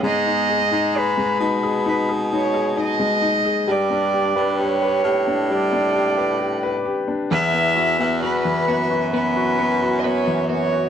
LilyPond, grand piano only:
\new Staff \with { instrumentName = "Grand piano" } { \time 4/4 \key gis \minor \tempo 4 = 66 gis16 dis'16 gis'16 dis'16 gis'16 gis16 dis'16 gis'16 dis'16 gis'16 dis'16 gis'16 dis'16 gis16 dis'16 gis'16 | g16 d'16 g'16 b'16 g'16 b'16 g'16 d'16 g16 d'16 g'16 b'16 g'16 b'16 g'16 d'16 | e16 b16 fis'16 b16 fis'16 e16 b16 fis'16 b16 fis'16 b16 fis'16 b16 e16 b16 fis'16 | }